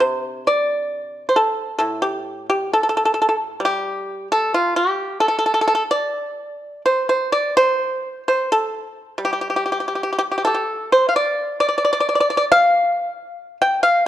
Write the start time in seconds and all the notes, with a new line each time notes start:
Already playing: D3
0.00 C3 C5
0.47 D5
1.29 C5
1.36 A4
1.78 A2 A4
2.02 G4
2.50 G4
2.73 A4
2.83 A4
2.89 A4
2.97 A4
3.05 A4
3.14 A4
3.22 A4
3.29 A4
3.60 G3
3.65 G4
4.32 A4
4.54 F4
4.76 G4
5.20 A4
5.28 A4
5.39 A4
5.46 A4
5.54 A4
5.61 A4
5.68 A4
5.75 A4
5.91 D5
6.86 C5
7.09 C5
7.32 D5
7.57 C5
8.28 C5
8.52 A4
9.18 G3
9.25 G4
9.33 G4
9.41 G4
9.50 G4
9.56 G4
9.66 G4
9.72 G4
9.80 G4
9.88 G4
9.95 G4
10.03 G4
10.13 G4
10.19 G4
10.32 G4
10.38 G4
10.45 G4 A4
10.54 G4
10.92 C5
11.09 F5
11.16 D5
11.60 D5
11.69 D5
11.78 D5
11.85 D5
11.93 D5
12.00 D5
12.09 D5
12.15 D5
12.20 D5
12.30 D5
12.37 D5
12.52 F5
13.62 G5
13.83 F5